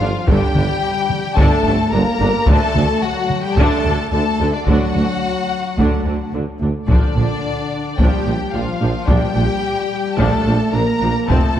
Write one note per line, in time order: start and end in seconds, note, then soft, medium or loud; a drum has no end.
0.00 0.12 G1 soft
0.00 0.09 D3 medium
0.00 0.27 F3 medium
0.00 0.09 D4 medium
0.00 0.26 F4 medium
0.00 0.28 F5 medium
0.00 impact medium
0.27 0.36 G1 medium
0.27 0.39 G1 medium
0.27 0.36 G2 medium
0.27 0.54 D3 medium
0.27 1.39 G3 medium
0.27 0.54 D4 medium
0.27 1.35 G4 medium
0.27 1.37 G5 loud
0.27 taiko medium
0.55 0.66 G1 medium
0.55 0.64 G1 soft
0.55 0.64 G2 medium
0.55 0.63 D3 medium
0.55 0.63 D4 soft
0.55 taiko mid medium
1.10 taiko mid soft
1.37 1.46 G1 medium
1.37 1.49 G1 medium
1.37 1.46 G2 medium
1.37 1.63 D3 medium
1.37 1.93 A3 medium
1.37 1.63 D4 medium
1.37 1.91 A4 medium
1.37 1.93 A5 medium
1.37 taiko medium
1.64 1.72 G1 medium
1.64 1.77 G1 medium
1.64 1.74 G2 medium
1.64 1.75 D3 medium
1.64 1.75 D4 medium
1.91 2.00 G1 medium
1.91 2.04 G1 medium
1.91 2.01 G2 medium
1.91 2.01 D3 medium
1.91 2.47 A#3 medium
1.91 2.02 D4 medium
1.91 2.47 A#4 medium
1.91 2.46 A#5 medium
2.19 2.28 G1 medium
2.19 2.32 G1 medium
2.19 2.27 G2 medium
2.19 2.28 D3 medium
2.19 2.29 D4 medium
2.46 2.55 D2 medium
2.46 2.59 D2 medium
2.46 2.74 D3 medium
2.46 3.03 A3 medium
2.46 2.73 D4 medium
2.46 3.02 A4 medium
2.46 3.03 A5 loud
2.46 taiko medium
2.75 2.83 D2 medium
2.75 2.87 D2 medium
2.75 2.85 D3 medium
2.75 2.85 D4 medium
2.75 taiko mid soft
3.01 3.45 F#3 medium
3.01 3.43 F#4 medium
3.01 3.44 F#5 medium
3.30 taiko mid soft
3.42 3.57 G3 medium
3.42 3.57 G4 medium
3.42 3.57 G5 medium
3.57 3.65 D2 medium
3.57 3.68 D2 medium
3.57 3.83 D3 medium
3.57 4.13 A3 medium
3.57 3.84 D4 medium
3.57 4.10 A4 medium
3.57 4.11 A5 medium
3.57 taiko medium
3.85 3.93 D2 medium
3.85 3.96 D2 medium
3.85 3.93 D2 medium
3.85 3.95 D3 medium
3.85 3.95 D4 medium
4.11 4.19 D2 medium
4.11 4.20 D2 medium
4.11 4.24 D2 medium
4.11 4.22 D3 medium
4.11 4.54 A3 medium
4.11 4.22 D4 medium
4.11 4.53 A4 medium
4.11 4.53 A5 medium
4.40 4.51 D2 medium
4.40 4.48 D2 medium
4.40 4.49 D3 medium
4.40 4.49 D4 medium
4.52 4.68 D3 medium
4.52 4.67 D4 medium
4.52 4.68 D5 medium
4.64 4.75 D2 medium
4.64 4.78 D2 medium
4.64 4.76 D2 medium
4.64 4.93 D3 medium
4.64 4.93 D4 medium
4.64 6.31 F#4 medium
4.64 6.32 F#5 medium
4.64 taiko medium
4.69 6.30 F#3 medium
4.95 5.03 D2 soft
4.95 5.06 D2 soft
4.95 5.04 D2 soft
4.95 5.04 D3 soft
4.95 5.04 D4 soft
5.77 5.85 D2 medium
5.77 5.86 D2 medium
5.77 5.89 D2 medium
5.77 6.04 D3 medium
5.77 6.04 D4 medium
5.77 taiko medium
6.05 6.13 D2 soft
6.05 6.17 D2 soft
6.05 6.14 D3 soft
6.05 6.15 D4 soft
6.32 6.40 D2 soft
6.32 6.44 D2 soft
6.32 6.42 D2 soft
6.32 6.43 D3 soft
6.32 6.43 D4 soft
6.60 6.68 D2 soft
6.60 6.72 D2 soft
6.60 6.71 D3 soft
6.60 6.71 D4 soft
6.87 6.97 A#1 medium
6.87 7.00 A#1 medium
6.87 6.95 A#2 medium
6.87 7.94 D3 medium
6.87 7.15 F3 medium
6.87 7.94 D4 medium
6.87 7.15 D4 soft
6.87 7.94 D5 medium
6.87 taiko medium
7.16 7.24 A#1 soft
7.16 7.27 A#1 soft
7.16 7.24 A#2 soft
7.16 7.26 F3 soft
7.16 7.25 D4 soft
7.97 8.07 A#1 medium
7.97 8.10 A#1 medium
7.97 8.07 A#2 medium
7.97 8.25 F3 medium
7.97 8.53 G3 medium
7.97 8.25 D4 medium
7.97 8.52 G4 medium
7.97 8.53 G5 medium
7.97 taiko medium
8.26 8.34 A#1 soft
8.26 8.37 A#1 soft
8.26 8.34 A#2 soft
8.26 8.34 F3 soft
8.26 8.34 D4 soft
8.53 8.65 A#1 soft
8.53 8.63 A#1 soft
8.53 8.62 A#2 soft
8.53 8.61 F3 soft
8.53 9.09 F3 medium
8.53 8.62 D4 soft
8.53 9.09 F4 medium
8.53 9.08 F5 medium
8.81 8.92 A#1 soft
8.81 8.91 A#1 soft
8.81 8.89 A#2 soft
8.81 8.89 F3 medium
8.81 8.89 D4 medium
9.07 9.19 A#1 medium
9.07 9.17 A#1 medium
9.07 9.16 A#2 medium
9.07 9.33 F3 medium
9.07 10.16 G3 medium
9.07 9.34 D4 medium
9.07 10.19 G4 medium
9.07 10.18 G5 medium
9.07 taiko medium
9.35 9.46 A#1 soft
9.35 9.44 A#1 medium
9.35 9.44 A#2 soft
9.35 9.43 F3 soft
9.35 9.44 D4 soft
10.18 10.27 A#1 medium
10.18 10.30 A#1 medium
10.18 10.26 A#2 medium
10.18 10.44 F3 medium
10.18 10.74 A3 medium
10.18 10.44 D4 medium
10.18 10.74 A4 medium
10.18 10.74 A5 medium
10.18 taiko medium
10.46 10.54 A#1 soft
10.46 10.58 A#1 medium
10.46 10.54 A#2 soft
10.46 10.55 F3 medium
10.46 10.55 D4 medium
10.72 10.81 A#1 soft
10.72 10.85 A#1 soft
10.72 10.82 A#2 soft
10.72 10.81 F3 soft
10.72 11.29 A#3 medium
10.72 10.81 D4 medium
10.72 11.28 A#4 medium
10.72 11.28 A#5 medium
11.01 11.12 A#1 soft
11.01 11.10 A#1 soft
11.01 11.09 A#2 soft
11.01 11.10 F3 medium
11.01 11.10 D4 soft
11.28 11.36 F1 medium
11.28 11.40 F1 medium
11.28 11.38 F2 medium
11.28 11.54 F3 medium
11.28 11.60 A3 medium
11.28 11.54 C4 medium
11.28 11.60 A4 medium
11.28 11.60 A5 medium
11.28 taiko medium
11.56 11.60 F3 soft
11.56 11.60 C4 soft